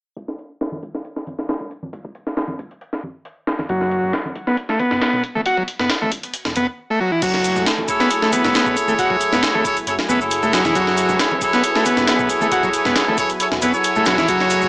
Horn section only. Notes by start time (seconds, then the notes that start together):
7.88 E4 G#4 A4 C#5
8.44 E4 G#4 A4 C#5
9.65 E4 G#4 A4 C#5
9.87 E4 G#4 A4 C#5
10.09 E4 G#4 A4 C#5
10.21 E4 G#4 A4 C#5
11.41 E4 G#4 A4 C#5
11.97 E4 G#4 A4 C#5
13.18 E4 G#4 A4 C#5
13.40 E4 G#4 A4 C#5
13.62 E4 G#4 A4 C#5
13.74 E4 G#4 A4 C#5